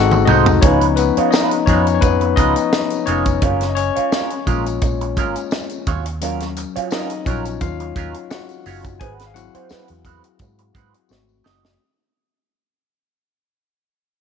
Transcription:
Already playing: G#1 G#3 C4 D#4 F#4 A4 F#5
0.12 muted clean electric guitar stroke, high tom, tambourine
0.25 C2 A3 D#4 D#5, mid tom, tambourine
0.30 F#4 C5
0.46 muted clean electric guitar stroke, floor tom, tambourine
0.61 C#2 F3 G#3 B3 C#4 D#4 F4 B4 C#5, kick, closed hi-hat
0.81 closed hi-hat
0.96 B3 B4, muted clean electric guitar stroke, closed hi-hat, tambourine
1.17 G#3 D#4 F4 C#5, muted fingered electric bass stroke, closed hi-hat
1.31 G#3 D#4 F4 D#5, snare, tambourine
1.35 B4
1.51 muted clean electric guitar stroke, closed hi-hat
1.66 F2 F3 G#3 B3 C#4 D#4 C#5, kick, closed hi-hat, tambourine
1.70 F4 B4
1.87 muted clean electric guitar stroke, closed hi-hat, tambourine
1.94 C#5
2.01 F2 B3 B4, muted clean electric guitar stroke, kick, closed hi-hat, tambourine
2.21 muted clean electric guitar stroke, closed hi-hat
2.36 C#2 G#3 D#4 F4 B4 D#5, kick, closed hi-hat, tambourine
2.56 muted clean electric guitar stroke, closed hi-hat, tambourine
2.73 muted clean electric guitar stroke, snare, tambourine
2.90 closed hi-hat, tambourine
3.06 F1 G#3 C#4 D#4 F4 C#5, closed hi-hat, tambourine
3.25 muted clean electric guitar stroke, kick, closed hi-hat, tambourine
3.42 F#1 G#3 C#4 F4 A#4, kick, closed hi-hat
3.61 snare, closed hi-hat
3.69 D#5
3.75 C#4 C#5, muted clean electric guitar stroke, closed hi-hat, tambourine
3.96 G#3 C#4 F4 C#5, muted fingered electric bass stroke, closed hi-hat
4.12 G#3 C#4 F4 A#4, snare, tambourine
4.30 muted clean electric guitar stroke, closed hi-hat
4.46 A#1 G#3 A#3 C#4 F4 A#4, kick, closed hi-hat, tambourine
4.66 muted clean electric guitar stroke, closed hi-hat, tambourine
4.81 A#1, muted clean electric guitar stroke, kick, closed hi-hat, tambourine
5.01 muted clean electric guitar stroke, closed hi-hat
5.16 G#1 G#3 C#4 F4 A#4, kick, closed hi-hat, tambourine
5.36 muted clean electric guitar stroke, closed hi-hat, tambourine
5.51 muted clean electric guitar stroke, snare, tambourine
5.69 closed hi-hat, tambourine
5.87 D#2 F#3 C#4 F4 C#5, kick, closed hi-hat, tambourine
6.06 muted clean electric guitar stroke, closed hi-hat
6.21 F#3 C#4 F4 A#4, closed hi-hat
6.40 snare, closed hi-hat
6.56 muted clean electric guitar stroke, closed hi-hat, tambourine
6.76 F#3 C#4 F4 C#5, muted fingered electric bass stroke, closed hi-hat
6.91 F#3 C#4 D#4 F4 A#4 D#5, snare, tambourine
7.10 muted clean electric guitar stroke, closed hi-hat
7.25 A#1 F#3 C#4 F4 C#5, kick, closed hi-hat, tambourine
7.29 A#4
7.45 muted clean electric guitar stroke, closed hi-hat, tambourine
7.61 D#2 F4 F5, muted clean electric guitar stroke, kick, closed hi-hat, tambourine
7.80 muted clean electric guitar stroke, closed hi-hat
7.96 D#2 F#3 C#4 F4 A#4, kick, closed hi-hat, tambourine
8.14 muted clean electric guitar stroke, closed hi-hat
8.30 F#4 F#5, muted clean electric guitar stroke, snare, tambourine
8.49 closed hi-hat, tambourine
8.65 F#1 F#3 C#4 F4 C#5, open hi-hat, tambourine
8.84 muted clean electric guitar stroke, kick, closed hi-hat, tambourine
9.00 G#1 G#3 C4 F#4 G#4 B4 G#5, kick, closed hi-hat
9.19 snare, closed hi-hat
9.27 F5
9.34 F#3 C4 E4 F#4 F#5, muted clean electric guitar stroke, closed hi-hat, tambourine
9.55 G#3 C4 F#4 C5, muted fingered electric bass stroke, closed hi-hat
9.69 G#3 C4 F#4 B4, muted fingered electric bass stroke, snare, tambourine
9.88 E2, muted clean electric guitar stroke, closed hi-hat
10.05 G#3 C4 F#4 B4, kick, closed hi-hat, tambourine
10.24 muted clean electric guitar stroke, closed hi-hat
10.39 G#2, muted clean electric guitar stroke, kick, closed hi-hat, tambourine
10.58 muted clean electric guitar stroke, closed hi-hat
10.75 G#2 G#3 C4 F#4 B4, kick, closed hi-hat, tambourine
10.94 muted clean electric guitar stroke, closed hi-hat
11.09 G#1 A3 C4 F#4, muted clean electric guitar stroke, snare, tambourine
11.29 tambourine
11.44 F#1 A3 D#4 F#4 D#5, snare, tambourine
11.63 muted clean electric guitar stroke, snare

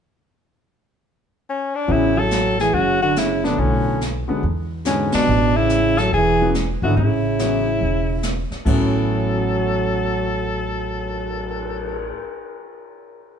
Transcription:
1.50 C#4
1.75 D4
1.88 A1 C#3 E3 F#3 B3 C#4, brush sweep, kick
1.92 E4
2.18 F#3 A4
2.31 snare, hi-hat pedal
2.59 E3 G#4, snare
2.73 F#1 C#3 F#4, brush sweep, kick
3.02 D3 F#4
3.16 C#3 E4, snare, hi-hat pedal
3.44 B2 D3 F#3 A3 B3 D4, snare
3.58 B1 A2 C#4, brush sweep, kick
4.01 snare, hi-hat pedal
4.28 D3 F#3 G#3 B3, muted upright bass stroke
4.43 E2, brush sweep, kick
4.85 G#2 D3 F#3 G#3 B3 C#4, snare, hi-hat pedal
5.12 B2 D4, muted upright bass stroke, snare, ride
5.27 A1, brush sweep
5.56 C#3 E4
5.69 snare, hi-hat pedal
5.98 F#3 A4, snare
6.13 E1 E3 G#4, brush sweep, kick
6.41 E3 F#3 B3 C#4
6.54 snare, hi-hat pedal
6.82 G#1 D3 E3 F#3 B3 E4 F#4
6.97 A1 C#3 E4, brush sweep, kick
7.39 E3 F#3 B3 C#4, snare, hi-hat pedal
7.81 E1, brush sweep, kick
8.23 snare, hi-hat pedal
8.51 muted upright bass stroke, snare
8.65 A1 A2 E3 F#3 B3 C#4 A4, kick, crash
8.94 cymbal swell

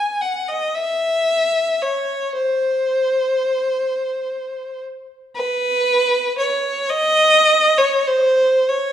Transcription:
Already playing: G#5
0.21 F#5
0.48 D#5
0.75 E5
1.82 C#5
2.35 C5
5.35 B4
6.38 C#5
6.90 D#5
7.78 C#5
8.07 C5
8.69 C#5

